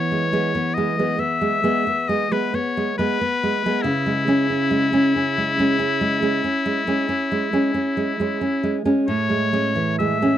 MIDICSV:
0, 0, Header, 1, 3, 480
1, 0, Start_track
1, 0, Tempo, 890208
1, 1610, Tempo, 864553
1, 2084, Time_signature, 12, 3, 24, 8
1, 4010, Tempo, 898204
1, 5651, End_track
2, 0, Start_track
2, 0, Title_t, "Oboe"
2, 0, Program_c, 0, 68
2, 0, Note_on_c, 0, 73, 95
2, 400, Note_on_c, 0, 75, 90
2, 408, Note_off_c, 0, 73, 0
2, 646, Note_on_c, 0, 76, 108
2, 654, Note_off_c, 0, 75, 0
2, 1125, Note_on_c, 0, 75, 94
2, 1133, Note_off_c, 0, 76, 0
2, 1252, Note_on_c, 0, 71, 83
2, 1260, Note_off_c, 0, 75, 0
2, 1372, Note_on_c, 0, 73, 83
2, 1380, Note_off_c, 0, 71, 0
2, 1602, Note_off_c, 0, 73, 0
2, 1606, Note_on_c, 0, 71, 97
2, 2073, Note_on_c, 0, 64, 102
2, 2081, Note_off_c, 0, 71, 0
2, 4809, Note_off_c, 0, 64, 0
2, 4957, Note_on_c, 0, 73, 103
2, 5422, Note_off_c, 0, 73, 0
2, 5441, Note_on_c, 0, 76, 92
2, 5651, Note_off_c, 0, 76, 0
2, 5651, End_track
3, 0, Start_track
3, 0, Title_t, "Nylon-string guitar"
3, 0, Program_c, 1, 24
3, 0, Note_on_c, 1, 52, 68
3, 0, Note_on_c, 1, 59, 55
3, 63, Note_on_c, 1, 56, 52
3, 125, Note_off_c, 1, 59, 0
3, 170, Note_off_c, 1, 56, 0
3, 177, Note_on_c, 1, 56, 54
3, 180, Note_on_c, 1, 59, 59
3, 280, Note_off_c, 1, 56, 0
3, 282, Note_off_c, 1, 59, 0
3, 295, Note_on_c, 1, 59, 56
3, 418, Note_on_c, 1, 56, 63
3, 482, Note_off_c, 1, 59, 0
3, 528, Note_off_c, 1, 56, 0
3, 535, Note_on_c, 1, 56, 50
3, 537, Note_on_c, 1, 59, 59
3, 628, Note_off_c, 1, 52, 0
3, 633, Note_off_c, 1, 59, 0
3, 638, Note_off_c, 1, 56, 0
3, 639, Note_on_c, 1, 59, 53
3, 762, Note_on_c, 1, 56, 54
3, 833, Note_off_c, 1, 59, 0
3, 876, Note_off_c, 1, 56, 0
3, 882, Note_on_c, 1, 56, 60
3, 886, Note_on_c, 1, 59, 61
3, 992, Note_off_c, 1, 56, 0
3, 995, Note_off_c, 1, 59, 0
3, 1008, Note_on_c, 1, 59, 59
3, 1127, Note_on_c, 1, 56, 56
3, 1203, Note_off_c, 1, 59, 0
3, 1242, Note_off_c, 1, 56, 0
3, 1248, Note_on_c, 1, 56, 53
3, 1252, Note_on_c, 1, 59, 56
3, 1359, Note_off_c, 1, 56, 0
3, 1360, Note_off_c, 1, 59, 0
3, 1368, Note_on_c, 1, 59, 63
3, 1495, Note_on_c, 1, 56, 54
3, 1562, Note_off_c, 1, 59, 0
3, 1606, Note_off_c, 1, 56, 0
3, 1612, Note_on_c, 1, 56, 54
3, 1612, Note_on_c, 1, 59, 60
3, 1719, Note_off_c, 1, 59, 0
3, 1720, Note_off_c, 1, 56, 0
3, 1736, Note_on_c, 1, 59, 57
3, 1859, Note_on_c, 1, 56, 54
3, 1922, Note_off_c, 1, 59, 0
3, 1976, Note_off_c, 1, 56, 0
3, 1983, Note_on_c, 1, 56, 53
3, 1985, Note_on_c, 1, 59, 64
3, 2081, Note_off_c, 1, 56, 0
3, 2083, Note_off_c, 1, 59, 0
3, 2085, Note_on_c, 1, 49, 69
3, 2208, Note_on_c, 1, 56, 52
3, 2319, Note_off_c, 1, 56, 0
3, 2325, Note_on_c, 1, 56, 50
3, 2328, Note_on_c, 1, 61, 59
3, 2432, Note_off_c, 1, 56, 0
3, 2433, Note_off_c, 1, 61, 0
3, 2450, Note_on_c, 1, 61, 51
3, 2566, Note_on_c, 1, 56, 57
3, 2641, Note_off_c, 1, 61, 0
3, 2682, Note_off_c, 1, 56, 0
3, 2688, Note_on_c, 1, 56, 54
3, 2690, Note_on_c, 1, 61, 61
3, 2797, Note_off_c, 1, 56, 0
3, 2797, Note_off_c, 1, 61, 0
3, 2818, Note_on_c, 1, 61, 52
3, 2938, Note_on_c, 1, 56, 57
3, 3007, Note_off_c, 1, 61, 0
3, 3050, Note_off_c, 1, 56, 0
3, 3056, Note_on_c, 1, 56, 54
3, 3058, Note_on_c, 1, 61, 61
3, 3162, Note_off_c, 1, 56, 0
3, 3162, Note_off_c, 1, 61, 0
3, 3168, Note_on_c, 1, 61, 58
3, 3289, Note_on_c, 1, 56, 64
3, 3360, Note_off_c, 1, 61, 0
3, 3402, Note_off_c, 1, 56, 0
3, 3408, Note_on_c, 1, 56, 55
3, 3411, Note_on_c, 1, 61, 60
3, 3506, Note_off_c, 1, 49, 0
3, 3515, Note_off_c, 1, 56, 0
3, 3516, Note_off_c, 1, 61, 0
3, 3529, Note_on_c, 1, 61, 57
3, 3648, Note_on_c, 1, 56, 60
3, 3720, Note_off_c, 1, 61, 0
3, 3760, Note_off_c, 1, 56, 0
3, 3767, Note_on_c, 1, 56, 56
3, 3769, Note_on_c, 1, 61, 63
3, 3876, Note_off_c, 1, 56, 0
3, 3877, Note_off_c, 1, 61, 0
3, 3887, Note_on_c, 1, 61, 61
3, 4014, Note_on_c, 1, 56, 58
3, 4081, Note_off_c, 1, 61, 0
3, 4121, Note_off_c, 1, 56, 0
3, 4128, Note_on_c, 1, 56, 50
3, 4130, Note_on_c, 1, 61, 58
3, 4235, Note_off_c, 1, 56, 0
3, 4236, Note_off_c, 1, 61, 0
3, 4242, Note_on_c, 1, 61, 61
3, 4363, Note_on_c, 1, 56, 59
3, 4434, Note_off_c, 1, 61, 0
3, 4478, Note_off_c, 1, 56, 0
3, 4485, Note_on_c, 1, 56, 58
3, 4490, Note_on_c, 1, 61, 60
3, 4591, Note_off_c, 1, 56, 0
3, 4594, Note_off_c, 1, 61, 0
3, 4600, Note_on_c, 1, 61, 59
3, 4719, Note_on_c, 1, 56, 55
3, 4790, Note_off_c, 1, 61, 0
3, 4830, Note_off_c, 1, 56, 0
3, 4836, Note_on_c, 1, 56, 54
3, 4837, Note_on_c, 1, 61, 61
3, 4945, Note_off_c, 1, 56, 0
3, 4945, Note_off_c, 1, 61, 0
3, 4955, Note_on_c, 1, 45, 67
3, 5072, Note_on_c, 1, 56, 53
3, 5189, Note_off_c, 1, 56, 0
3, 5196, Note_on_c, 1, 56, 54
3, 5200, Note_on_c, 1, 61, 61
3, 5307, Note_off_c, 1, 56, 0
3, 5309, Note_off_c, 1, 61, 0
3, 5317, Note_on_c, 1, 52, 51
3, 5447, Note_on_c, 1, 56, 60
3, 5516, Note_off_c, 1, 52, 0
3, 5559, Note_off_c, 1, 56, 0
3, 5565, Note_on_c, 1, 56, 49
3, 5568, Note_on_c, 1, 61, 60
3, 5651, Note_off_c, 1, 45, 0
3, 5651, Note_off_c, 1, 56, 0
3, 5651, Note_off_c, 1, 61, 0
3, 5651, End_track
0, 0, End_of_file